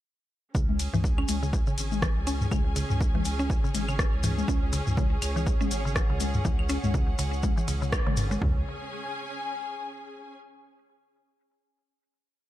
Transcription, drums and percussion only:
0.55 kick loud
0.55 shekere soft
0.69 high tom soft
0.79 closed hi-hat medium
0.79 ride medium
0.79 shekere loud
0.94 mid tom medium
0.94 shekere soft
1.04 kick loud
1.04 shekere soft
1.18 claves medium
1.28 closed hi-hat medium
1.28 high tom soft
1.28 ride medium
1.28 shekere medium
1.43 shekere soft
1.53 kick loud
1.53 shekere soft
1.67 shekere soft
1.78 closed hi-hat medium
1.78 ride medium
1.78 shekere loud
1.92 high tom soft
1.92 shekere soft
2.02 kick loud
2.02 cross-stick loud
2.02 shekere medium
2.27 closed hi-hat medium
2.27 ride medium
2.27 shekere medium
2.41 mid tom medium
2.41 shekere soft
2.51 kick loud
2.51 high tom soft
2.51 claves medium
2.51 shekere medium
2.76 closed hi-hat loud
2.76 ride medium
2.76 shekere medium
2.90 mid tom medium
2.90 shekere soft
3.01 kick loud
3.01 shekere medium
3.15 high tom soft
3.25 closed hi-hat medium
3.25 ride medium
3.25 shekere loud
3.39 shekere soft
3.50 kick loud
3.50 shekere soft
3.65 shekere soft
3.74 closed hi-hat medium
3.74 high tom soft
3.74 ride medium
3.74 shekere medium
3.89 claves medium
3.89 shekere soft
3.99 kick loud
3.99 cross-stick loud
3.99 shekere medium
4.23 closed hi-hat loud
4.23 mid tom loud
4.23 ride medium
4.23 shekere medium
4.38 high tom soft
4.38 shekere soft
4.48 kick loud
4.48 shekere medium
4.73 closed hi-hat loud
4.73 ride medium
4.73 shekere loud
4.87 mid tom medium
4.87 shekere soft
4.97 kick loud
4.97 high tom soft
4.97 shekere medium
5.22 closed hi-hat loud
5.22 ride medium
5.22 claves medium
5.22 shekere loud
5.37 shekere soft
5.46 kick loud
5.46 shekere medium
5.61 high tom soft
5.61 shekere soft
5.71 closed hi-hat medium
5.71 ride medium
5.71 shekere loud
5.87 shekere soft
5.96 kick loud
5.96 cross-stick loud
5.96 shekere medium
6.20 closed hi-hat medium
6.20 high tom soft
6.20 ride medium
6.20 shekere medium
6.33 mid tom medium
6.33 shekere soft
6.45 kick loud
6.45 shekere medium
6.59 claves medium
6.69 closed hi-hat medium
6.69 ride medium
6.69 shekere medium
6.84 mid tom medium
6.84 high tom soft
6.84 shekere soft
6.94 kick loud
6.94 shekere medium
7.18 closed hi-hat loud
7.18 ride medium
7.18 shekere loud
7.33 shekere soft
7.43 kick loud
7.43 high tom soft
7.43 shekere medium
7.58 shekere soft
7.68 closed hi-hat medium
7.68 ride medium
7.68 shekere medium
7.83 shekere soft
7.92 kick loud
7.92 cross-stick loud
7.92 claves medium
7.92 shekere medium
8.07 high tom soft
8.17 closed hi-hat loud
8.17 mid tom medium
8.17 ride medium
8.17 shekere loud
8.31 shekere soft
8.42 kick loud
8.42 floor tom loud

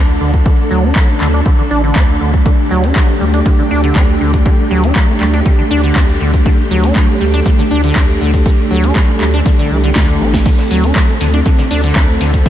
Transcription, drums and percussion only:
0.34 kick medium
0.46 kick loud
0.96 kick loud
0.96 clap loud
1.21 clap medium
1.46 kick loud
1.96 kick loud
1.96 clap loud
2.34 kick medium
2.46 kick loud
2.46 closed hi-hat soft
2.84 closed hi-hat medium
2.96 kick loud
2.96 clap loud
2.96 closed hi-hat soft
3.34 closed hi-hat medium
3.46 kick loud
3.46 closed hi-hat soft
3.84 closed hi-hat medium
3.96 kick loud
3.96 clap loud
3.96 closed hi-hat soft
4.34 kick medium
4.34 closed hi-hat medium
4.46 kick loud
4.46 closed hi-hat soft
4.84 closed hi-hat medium
4.96 kick loud
4.96 clap loud
4.96 closed hi-hat soft
5.21 clap medium
5.34 closed hi-hat medium
5.46 kick loud
5.46 closed hi-hat soft
5.84 closed hi-hat medium
5.96 kick loud
5.96 clap loud
5.96 closed hi-hat soft
6.34 kick medium
6.34 closed hi-hat medium
6.46 kick loud
6.46 closed hi-hat soft
6.84 closed hi-hat medium
6.96 kick loud
6.96 clap loud
6.96 closed hi-hat soft
7.34 closed hi-hat medium
7.46 kick loud
7.46 closed hi-hat medium
7.84 closed hi-hat medium
7.96 kick loud
7.96 clap loud
7.96 closed hi-hat medium
8.34 kick medium
8.34 closed hi-hat medium
8.46 kick loud
8.46 closed hi-hat medium
8.84 closed hi-hat medium
8.96 kick loud
8.96 clap loud
8.96 closed hi-hat medium
9.21 clap medium
9.34 closed hi-hat medium
9.46 kick loud
9.46 closed hi-hat medium
9.84 closed hi-hat medium
9.96 kick loud
9.96 snare loud
9.96 clap loud
9.96 closed hi-hat medium
10.34 kick medium
10.34 snare medium
10.34 closed hi-hat medium
10.46 kick loud
10.46 closed hi-hat soft
10.46 closed hi-hat medium
10.46 crash medium
10.58 snare medium
10.71 closed hi-hat medium
10.71 open hi-hat loud
10.84 closed hi-hat medium
10.96 kick loud
10.96 snare loud
10.96 clap loud
10.96 closed hi-hat soft
10.96 closed hi-hat medium
11.20 closed hi-hat medium
11.20 open hi-hat loud
11.34 closed hi-hat medium
11.46 kick loud
11.46 closed hi-hat medium
11.58 snare soft
11.71 open hi-hat loud
11.71 open hi-hat medium
11.84 closed hi-hat medium
11.96 kick loud
11.96 snare loud
11.96 clap loud
11.96 closed hi-hat medium
12.20 snare soft
12.20 closed hi-hat medium
12.20 open hi-hat loud
12.34 kick medium
12.34 closed hi-hat medium
12.45 kick loud
12.45 closed hi-hat medium
12.45 closed hi-hat soft

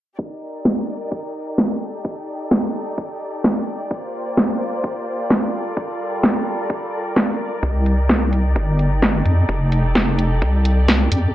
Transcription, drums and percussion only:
0.19 kick loud
0.65 kick loud
0.65 snare loud
1.12 kick loud
1.58 kick loud
1.58 snare loud
2.05 kick loud
2.51 kick loud
2.51 snare loud
2.98 kick loud
3.44 kick loud
3.44 snare loud
3.91 kick loud
4.37 kick loud
4.37 snare loud
4.84 kick loud
5.30 kick loud
5.30 snare loud
5.77 kick loud
6.23 kick loud
6.23 snare loud
6.70 kick loud
7.16 kick loud
7.16 snare loud
7.63 kick loud
7.86 closed hi-hat medium
8.09 kick loud
8.09 snare loud
8.33 closed hi-hat medium
8.56 kick loud
8.79 closed hi-hat medium
9.02 kick loud
9.02 snare loud
9.02 closed hi-hat medium
9.26 closed hi-hat medium
9.49 kick loud
9.72 closed hi-hat medium
9.95 kick loud
9.95 snare loud
10.19 closed hi-hat loud
10.42 kick loud
10.65 closed hi-hat loud
10.88 kick loud
10.88 snare loud
10.88 closed hi-hat medium
11.12 closed hi-hat loud

